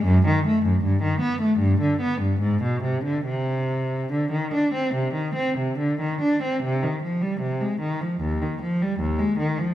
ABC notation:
X:1
M:4/4
L:1/16
Q:1/4=74
K:Cm
V:1 name="Cello" clef=bass
^F,, ^D, =A, F,, G,, D, =B, A, G,, =D, B, G,, _A,, =B,, C, D, | C,4 D, E, D C C, E, C C, D, E, D C | C, E, F, G, C, A, E, F, E,, E, F, G, E,, A, E, F, |]